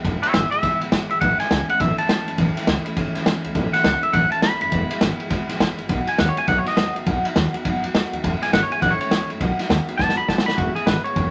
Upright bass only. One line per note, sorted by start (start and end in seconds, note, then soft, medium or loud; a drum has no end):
0.05 0.16 E1 medium
0.35 0.46 G#1 medium
0.52 muted upright bass stroke medium
0.82 0.88 A1 medium
0.92 1.03 G#1 medium
1.11 1.17 G#1 medium
1.22 1.33 A1 loud
1.40 muted upright bass stroke medium
1.51 1.62 C#2 loud
1.80 1.91 A1 loud
1.99 muted upright bass stroke medium
2.09 2.20 C#2 medium
2.28 2.35 F#1 medium
2.38 2.49 A1 loud
2.57 muted upright bass stroke medium
2.67 2.78 C#2 medium
3.15 3.22 C#2 loud
3.26 3.37 C#2 medium
3.44 3.51 C#2 medium
3.55 3.66 A1 loud
3.74 muted upright bass stroke medium
3.85 3.96 C#2 medium
4.03 muted upright bass stroke medium
4.13 4.25 A1 loud
4.32 muted upright bass stroke medium
4.43 4.54 C#2 medium
4.61 4.68 F#1 medium
4.72 4.83 E1 medium
4.91 muted upright bass stroke medium
5.02 5.13 G#1 medium
5.20 muted upright bass stroke medium
5.31 5.42 G#1 medium
5.50 5.56 A1 medium
5.60 5.71 G#1 medium
5.79 5.85 G#1 medium
5.89 6.01 B1 medium
6.20 6.31 D#2 loud
6.38 muted upright bass stroke medium
6.48 6.59 B1 loud
6.67 muted upright bass stroke medium
6.77 6.89 D#2 medium
6.96 7.02 A1 medium
7.07 7.18 B1 loud
7.25 muted upright bass stroke medium
7.36 7.47 D#2 medium
7.54 muted upright bass stroke medium
7.65 7.77 D#2 loud
7.83 7.90 E2 medium
7.94 8.05 D#2 loud
8.12 8.19 D#2 medium
8.24 8.35 E1 medium
8.41 muted upright bass stroke medium
8.53 8.64 G#1 medium
8.70 muted upright bass stroke medium
8.82 8.93 A1 loud
9.00 muted upright bass stroke medium
9.11 9.22 C#2 medium
9.30 9.36 F#1 medium
9.41 9.52 B1 medium
9.59 muted upright bass stroke medium
9.69 9.81 D#2 loud
9.88 muted upright bass stroke medium
9.99 10.11 D#2 loud
10.17 10.24 E2 medium
10.28 10.40 D#2 medium
10.47 10.54 D#2 medium
10.58 10.69 E1 medium
10.76 muted upright bass stroke medium
10.86 10.98 G#1 loud
11.05 muted upright bass stroke medium
11.16 11.27 E1 loud